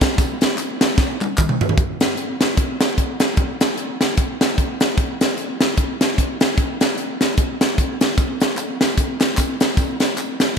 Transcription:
0.01 kick loud
0.01 snare loud
0.01 closed hi-hat medium
0.01 tambourine medium
0.18 kick loud
0.18 closed hi-hat medium
0.18 tambourine medium
0.41 snare loud
0.41 closed hi-hat medium
0.41 tambourine medium
0.58 clap medium
0.58 closed hi-hat medium
0.58 tambourine medium
0.81 snare loud
0.81 closed hi-hat medium
0.81 tambourine medium
0.98 kick loud
0.98 snare medium
0.98 tambourine medium
1.21 clap medium
1.21 high tom medium
1.21 tambourine medium
1.38 kick medium
1.38 clap loud
1.38 mid tom medium
1.38 tambourine loud
1.49 mid tom medium
1.61 floor tom loud
1.61 tambourine medium
1.69 floor tom loud
1.77 kick loud
1.77 closed hi-hat medium
2.01 snare loud
2.01 closed hi-hat medium
2.17 closed hi-hat medium
2.41 snare loud
2.41 closed hi-hat medium
2.57 kick loud
2.57 closed hi-hat medium
2.80 snare medium
2.80 closed hi-hat medium
2.98 kick medium
2.98 closed hi-hat medium
3.20 snare loud
3.20 closed hi-hat medium
3.37 kick loud
3.37 closed hi-hat medium
3.61 snare loud
3.61 closed hi-hat medium
3.77 closed hi-hat medium
4.01 snare medium
4.01 closed hi-hat medium
4.17 kick medium
4.17 closed hi-hat medium
4.41 snare loud
4.41 closed hi-hat medium
4.58 kick medium
4.58 closed hi-hat medium
4.80 snare loud
4.80 closed hi-hat medium
4.98 kick loud
4.98 closed hi-hat medium
5.21 snare loud
5.21 closed hi-hat medium
5.38 closed hi-hat medium
5.61 snare loud
5.61 closed hi-hat medium
5.77 kick medium
5.77 closed hi-hat medium
6.01 snare loud
6.01 closed hi-hat medium
6.18 kick medium
6.18 closed hi-hat medium
6.41 snare loud
6.41 closed hi-hat medium
6.58 kick medium
6.58 closed hi-hat medium
6.81 snare loud
6.81 closed hi-hat medium
6.98 closed hi-hat medium
7.21 snare medium
7.21 closed hi-hat medium
7.37 kick loud
7.37 closed hi-hat medium
7.61 snare loud
7.61 closed hi-hat medium
7.78 kick medium
7.78 closed hi-hat medium
8.01 snare loud
8.01 closed hi-hat medium
8.18 kick loud
8.18 closed hi-hat medium
8.18 tambourine medium
8.40 snare loud
8.40 closed hi-hat medium
8.40 tambourine medium
8.57 clap medium
8.57 closed hi-hat medium
8.57 tambourine medium
8.81 snare loud
8.81 closed hi-hat medium
8.81 tambourine medium
8.97 kick medium
8.97 closed hi-hat medium
8.97 tambourine medium
9.21 snare loud
9.21 clap medium
9.21 closed hi-hat medium
9.21 tambourine medium
9.37 kick medium
9.37 clap loud
9.37 closed hi-hat medium
9.37 tambourine loud
9.60 snare loud
9.60 closed hi-hat medium
9.60 tambourine medium
9.77 kick loud
9.77 closed hi-hat medium
9.77 tambourine medium
10.00 snare medium
10.00 closed hi-hat medium
10.00 tambourine medium
10.17 clap medium
10.17 closed hi-hat medium
10.17 tambourine medium
10.40 snare loud
10.40 closed hi-hat medium
10.40 tambourine medium

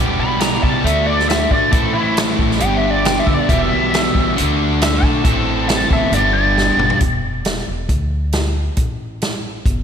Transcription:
0.00 0.17 E1 medium
0.00 0.83 E2 medium
0.00 0.84 B2 medium
0.00 0.84 E3 medium
0.00 0.84 G3 loud
0.00 0.84 B3 medium
0.00 0.84 G4 loud
0.19 0.58 B1 medium
0.19 0.40 B5 loud
0.40 0.63 A#5 medium
0.40 snare loud
0.40 closed hi-hat medium
0.63 0.83 C2 medium
0.63 0.85 A5 medium
0.63 kick medium
0.84 1.43 D2 loud
0.84 1.72 D3 medium
0.84 1.71 A3 loud
0.84 1.72 D4 loud
0.84 1.73 F#4 medium
0.84 1.07 E5 medium
0.84 closed hi-hat medium
1.06 1.28 D5 medium
1.20 snare soft
1.29 1.51 E5 medium
1.29 snare loud
1.29 closed hi-hat medium
1.51 1.71 A1 medium
1.51 1.73 D5 medium
1.51 kick medium
1.71 2.32 A1 medium
1.71 2.59 A2 medium
1.71 2.59 E3 medium
1.71 2.60 A3 medium
1.71 2.60 C4 medium
1.71 2.61 E4 medium
1.71 1.94 A4 medium
1.71 kick loud
1.71 closed hi-hat medium
1.93 2.16 E4 loud
2.17 snare loud
2.17 closed hi-hat medium
2.39 2.59 A1 medium
2.39 kick medium
2.51 snare soft
2.60 3.20 G1 loud
2.60 3.47 G2 medium
2.60 3.48 D3 medium
2.60 3.48 G3 loud
2.60 3.48 B3 loud
2.60 3.49 D4 loud
2.60 3.48 G4 loud
2.60 2.76 G5 loud
2.60 closed hi-hat medium
2.74 2.90 E5 medium
2.90 3.05 D5 medium
3.05 3.20 G5 loud
3.05 snare loud
3.05 closed hi-hat medium
3.19 3.34 E5 loud
3.27 3.37 G1 medium
3.27 kick medium
3.34 3.49 D5 medium
3.48 3.69 E1 loud
3.48 4.36 E2 medium
3.48 4.36 B2 loud
3.48 4.35 E3 medium
3.48 4.36 G3 loud
3.48 4.37 B3 medium
3.48 4.37 G4 loud
3.48 4.34 E5 loud
3.48 kick loud
3.48 closed hi-hat medium
3.72 4.11 B1 medium
3.94 snare loud
3.94 closed hi-hat medium
4.15 4.35 A1 medium
4.15 kick medium
4.35 5.23 D3 loud
4.35 5.23 A3 medium
4.35 5.24 D4 loud
4.35 5.24 F#4 loud
4.35 closed hi-hat medium
4.40 4.97 D2 loud
4.82 5.04 E5 loud
4.82 snare loud
4.82 closed hi-hat medium
5.03 5.25 B1 medium
5.03 5.68 A5 medium
5.03 kick medium
5.24 5.84 A1 loud
5.24 6.11 A2 medium
5.24 6.11 E3 medium
5.24 6.12 C4 loud
5.24 6.12 E4 medium
5.24 6.12 A4 loud
5.24 kick loud
5.24 closed hi-hat medium
5.69 5.91 A5 medium
5.69 snare loud
5.69 closed hi-hat medium
5.91 6.10 G1 medium
5.91 6.13 E5 medium
5.91 kick medium
6.12 6.71 G1 loud
6.12 7.00 G2 medium
6.12 7.00 D3 loud
6.12 7.00 G3 loud
6.12 7.00 B3 loud
6.12 7.01 D4 loud
6.12 7.01 G4 loud
6.12 6.33 D5 loud
6.12 closed hi-hat medium
6.34 6.99 D5 loud
6.58 snare medium
6.77 6.88 G1 medium
6.77 mid tom medium
6.90 floor tom medium
7.00 7.60 E1 medium
7.00 kick loud
7.00 closed hi-hat medium
7.45 snare loud
7.45 closed hi-hat medium
7.68 7.87 E1 medium
7.89 8.67 D2 medium
7.89 kick medium
7.89 closed hi-hat medium
8.32 snare loud
8.32 closed hi-hat medium
8.77 9.56 A1 medium
8.77 kick loud
8.77 closed hi-hat medium
9.22 snare loud
9.22 closed hi-hat medium
9.65 9.83 G1 medium
9.65 kick loud
9.65 closed hi-hat medium

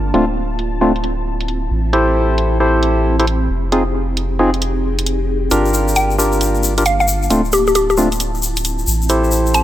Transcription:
0.00 0.12 G1 medium
0.00 0.12 A#3 medium
0.00 0.12 D4 medium
0.00 1.67 F4 medium
0.00 1.67 A5 medium
0.14 1.69 D1 medium
0.14 0.25 A3 medium
0.14 5.47 C4 medium
0.14 0.25 C4 medium
0.14 0.25 D4 medium
0.14 3.46 E4 medium
0.14 0.25 F4 medium
0.14 closed hi-hat medium
0.59 closed hi-hat medium
0.81 0.92 A3 medium
0.81 0.92 C4 medium
0.81 0.92 D4 medium
0.81 0.92 F4 loud
0.96 closed hi-hat soft
1.04 closed hi-hat medium
1.41 closed hi-hat medium
1.48 closed hi-hat medium
1.71 3.48 A1 medium
1.71 3.48 G4 medium
1.71 3.48 B5 medium
1.93 2.58 E4 medium
1.93 2.58 G4 medium
1.93 2.58 A4 medium
1.93 2.58 C5 medium
1.93 closed hi-hat medium
2.38 closed hi-hat medium
2.60 3.16 E4 medium
2.60 3.16 G4 medium
2.60 3.16 A4 medium
2.60 3.16 C5 medium
2.83 closed hi-hat medium
3.20 3.26 E4 medium
3.20 3.26 G4 medium
3.20 3.26 A4 medium
3.20 3.26 C5 medium
3.20 closed hi-hat medium
3.27 closed hi-hat medium
3.50 5.50 F1 medium
3.50 5.49 D#4 medium
3.50 5.49 G4 medium
3.50 5.49 G#4 medium
3.72 3.83 C4 medium
3.72 3.83 D#4 medium
3.72 3.83 F4 medium
3.72 3.83 G#4 loud
3.72 closed hi-hat medium
4.17 closed hi-hat medium
4.39 4.50 C4 medium
4.39 4.50 D#4 medium
4.39 4.50 F4 medium
4.39 4.50 G#4 loud
4.54 closed hi-hat soft
4.62 closed hi-hat medium
4.99 closed hi-hat medium
5.06 closed hi-hat medium
5.51 7.29 G1 medium
5.51 7.29 A#3 medium
5.51 6.17 D4 medium
5.51 7.29 D4 medium
5.51 6.17 F4 medium
5.51 8.84 F4 medium
5.51 6.17 G4 medium
5.51 6.17 A#4 medium
5.51 8.84 A5 medium
5.51 closed hi-hat medium
5.51 shaker medium
5.66 shaker soft
5.74 shaker medium
5.88 shaker soft
5.96 6.10 G5 medium
5.96 closed hi-hat medium
5.96 shaker medium
6.11 shaker soft
6.18 6.74 D4 medium
6.18 6.74 F4 medium
6.18 6.74 G4 medium
6.18 6.74 A#4 medium
6.18 shaker medium
6.32 shaker soft
6.41 closed hi-hat medium
6.41 shaker medium
6.55 shaker soft
6.63 shaker medium
6.78 6.84 D4 medium
6.78 6.84 F4 medium
6.78 6.84 G4 medium
6.78 6.84 A#4 medium
6.78 closed hi-hat medium
6.78 shaker soft
6.86 6.95 F5 medium
6.86 closed hi-hat medium
6.86 shaker medium
7.00 7.05 F5 medium
7.00 shaker soft
7.08 shaker medium
7.23 shaker soft
7.30 8.86 D1 medium
7.30 7.41 A3 medium
7.30 7.41 C4 medium
7.30 9.63 C4 medium
7.30 7.41 D4 medium
7.30 9.63 E4 medium
7.30 7.41 F4 loud
7.30 closed hi-hat medium
7.30 shaker medium
7.45 shaker soft
7.52 7.62 G4 medium
7.52 shaker medium
7.67 7.72 G4 medium
7.67 shaker soft
7.75 7.85 G4 medium
7.75 closed hi-hat medium
7.75 shaker soft
7.90 7.95 G4 medium
7.90 shaker soft
7.97 8.09 A3 medium
7.97 8.09 C4 medium
7.97 8.09 D4 medium
7.97 8.09 F4 loud
7.97 shaker medium
8.12 closed hi-hat soft
8.12 shaker soft
8.20 closed hi-hat medium
8.20 shaker medium
8.35 shaker soft
8.42 shaker medium
8.56 closed hi-hat medium
8.56 shaker soft
8.65 closed hi-hat medium
8.65 shaker medium
8.79 shaker soft
8.87 9.63 A1 medium
8.87 9.63 G5 medium
8.87 9.63 B5 medium
8.87 shaker medium
9.02 shaker soft
9.09 9.63 E4 medium
9.09 9.63 G4 medium
9.09 9.63 A4 medium
9.09 9.63 C5 medium
9.09 closed hi-hat medium
9.09 shaker soft
9.24 shaker soft
9.31 shaker medium
9.47 shaker soft
9.54 9.63 A5 medium
9.54 closed hi-hat medium
9.54 shaker soft

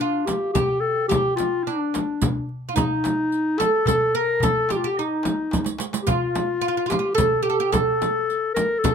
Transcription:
0.00 0.28 D4 medium
0.00 0.54 F4 medium
0.26 0.53 G4 medium
0.26 riq soft
0.26 darbuka tek medium
0.26 frame drum medium
0.53 0.82 G4 loud
0.53 1.08 G4 medium
0.53 riq medium
0.53 darbuka dum medium
0.53 frame drum medium
0.80 1.08 A4 medium
0.80 darbuka ka soft
1.08 1.35 G4 loud
1.08 1.67 G4 medium
1.08 riq medium
1.08 darbuka dum medium
1.08 frame drum loud
1.36 1.65 F4 medium
1.36 riq soft
1.36 darbuka tek medium
1.36 frame drum medium
1.63 2.47 D4 medium
1.63 2.45 D4 medium
1.63 darbuka ka soft
1.67 riq soft
1.94 riq soft
1.94 darbuka tek medium
1.94 frame drum medium
2.22 riq medium
2.22 frame drum medium
2.22 darbuka dum medium
2.49 darbuka ka soft
2.69 2.75 F4 medium
2.75 3.60 D#4 medium
2.75 3.55 D#4 medium
2.75 riq medium
2.75 darbuka dum loud
2.75 frame drum medium
3.04 riq soft
3.04 darbuka tek medium
3.04 frame drum medium
3.32 riq soft
3.32 darbuka ka soft
3.58 3.86 A4 medium
3.58 3.85 A4 medium
3.58 riq soft
3.58 darbuka tek medium
3.58 frame drum medium
3.86 4.14 A4 medium
3.86 4.18 A4 loud
3.86 riq medium
3.86 darbuka dum medium
3.86 frame drum medium
4.14 4.43 A#4 medium
4.14 4.46 A#4 loud
4.14 darbuka ka soft
4.40 4.70 A4 medium
4.40 riq medium
4.40 darbuka dum medium
4.40 frame drum medium
4.45 4.74 A4 loud
4.69 4.83 G4 medium
4.69 4.76 G4 medium
4.69 riq soft
4.69 darbuka tek medium
4.69 frame drum medium
4.75 4.88 F4 medium
4.84 4.98 G4 medium
4.84 5.01 G4 medium
4.99 5.77 D#4 medium
4.99 5.81 D#4 medium
4.99 riq soft
5.23 riq soft
5.23 darbuka tek medium
5.23 frame drum medium
5.51 riq medium
5.51 darbuka tek medium
5.51 frame drum medium
5.65 riq medium
5.65 darbuka ka medium
5.78 riq medium
5.78 darbuka tek medium
5.93 riq medium
5.93 darbuka ka medium
6.02 6.12 G4 medium
6.07 6.60 F4 medium
6.07 6.91 F4 medium
6.07 riq medium
6.07 darbuka dum medium
6.07 frame drum medium
6.35 riq soft
6.35 darbuka tek medium
6.35 frame drum medium
6.61 6.67 F4 medium
6.61 riq soft
6.68 6.76 F4 medium
6.77 6.85 F4 medium
6.86 6.91 F4 medium
6.86 7.15 G4 medium
6.86 riq soft
6.86 darbuka tek medium
6.92 6.98 F4 medium
6.92 frame drum medium
6.99 7.08 F4 medium
7.15 7.42 A4 medium
7.15 7.45 A4 loud
7.15 riq medium
7.15 frame drum loud
7.19 darbuka dum medium
7.43 7.49 G4 medium
7.43 7.74 G4 medium
7.50 7.58 A4 medium
7.60 7.72 G4 medium
7.72 8.83 A4 medium
7.72 8.54 A4 medium
7.72 riq medium
7.72 darbuka dum medium
7.72 frame drum loud
8.02 riq soft
8.02 darbuka tek medium
8.02 frame drum medium
8.30 riq soft
8.30 darbuka ka soft
8.54 8.81 A#4 medium
8.54 riq soft
8.54 darbuka tek medium
8.54 frame drum medium
8.79 8.95 A4 loud
8.84 8.95 A4 medium
8.84 riq medium
8.84 frame drum loud
8.84 darbuka dum medium

